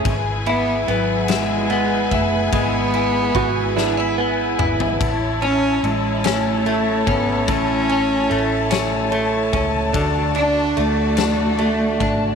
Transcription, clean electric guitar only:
\new Staff \with { instrumentName = "Clean electric guitar" } { \time 6/8 \key a \major \tempo 4. = 49 r8 e'8 b8 e'8 b8 e'8 | gis8 e'8 b8 d'16 e'16 b8 e'8 | r8 cis'4 cis'8 a8 cis'8 | a,8 cis'8 a8 cis'8 a8 cis'8 |
d8 d'8 a8 d'8 a8 d'8 | }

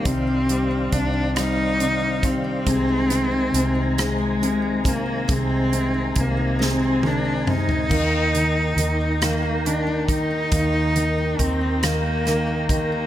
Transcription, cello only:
\new Staff \with { instrumentName = "Cello" } { \time 6/8 \key ees \major \tempo 4. = 46 c'4 d'8 ees'4 c'8~ | c'4. aes4 bes8 | c'4 bes8 c'8 d'8 ees'8~ | ees'4. bes8 d'8 ees'8~ |
ees'4 c'8 bes4 bes8 | }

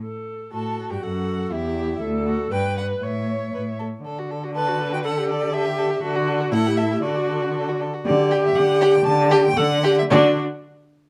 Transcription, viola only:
\new Staff \with { instrumentName = "Viola" } { \time 2/4 \key d \major \tempo 4 = 120 a'4 fis'4 | a'4 g'4 | a'4 b'4 | cis''4. r8 |
r4 b'4 | a'4 g'4 | fis'4 e'4 | fis'4. r8 |
g'2~ | g'4 a'8 r8 | d'8 r4. | }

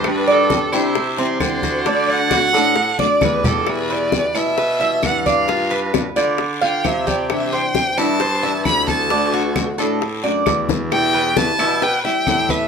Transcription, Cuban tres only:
\new Staff \with { instrumentName = "Cuban tres" } { \time 4/4 \key e \minor \tempo 4 = 132 g'8 d''4 e'4 c'4 fis'8 | d'4 fis'8 a'4 d''4 g'8 | r8 b'4 e'8 b'8 e''4 d''8 | f'8 b'4 d''4 f''4 g'8~ |
g'8 c''4 e'8 c''8 e''4 a'8 | d'8 fis'4 a'4 d''4 r8 | r8 b'4 e'8 b'8 e''4 b'8 | }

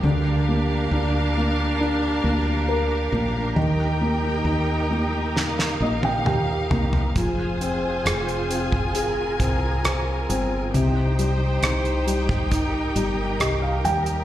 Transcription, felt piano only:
<<
  \new Staff \with { instrumentName = "Felt piano" } { \time 4/4 \key c \minor \tempo 4 = 68 r1 | r2 r8 ees''16 g''16 g''4 | r1 | r2. ees''16 f''16 g''8 | }
  \new Staff \with { instrumentName = "Felt piano" } { \time 4/4 \key c \minor d8 bes8 d'8 bes8 d'8 bes8 bes'8 bes8 | ees8 bes8 ees'8 bes8 ees'8 bes8 g'8 bes8 | f8 c'8 aes'8 c'8 aes'8 c'8 c''8 c'8 | c8 g8 ees'8 g8 ees'8 g8 g'8 g8 | }
>>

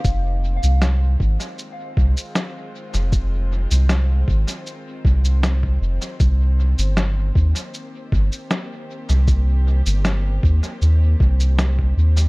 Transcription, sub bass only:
\new Staff \with { instrumentName = "Sub bass" } { \clef bass \time 4/4 \key f \minor \tempo 4 = 78 f,,8. c,8. aes,,16 r8. c,16 r4 f,,16~ | f,,8. c,8. aes,,16 r8. c,4 f,,16 r16 | c,8. g,,8. ees,16 r8. g,,16 r4 c,16~ | c,8. g,,8. ees,16 r16 ees,8 c,4 ees,8 | }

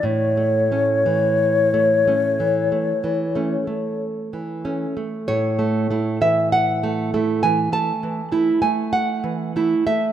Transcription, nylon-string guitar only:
\new Staff \with { instrumentName = "Nylon-string guitar" } { \time 4/4 \key a \major \tempo 4 = 48 << { r1 | cis''8. e''16 fis''8. gis''16 a''8. gis''16 fis''8. e''16 | } \\ { a,16 a16 <a cis'>16 e8 a16 <a cis'>16 e16 a16 e16 <a cis'>16 a8 e16 <a cis'>16 a16 | a,16 a16 <a e'>16 e8 a16 <a e'>16 e16 a16 e16 <a e'>16 a8 e16 <a e'>16 a16 | } >> }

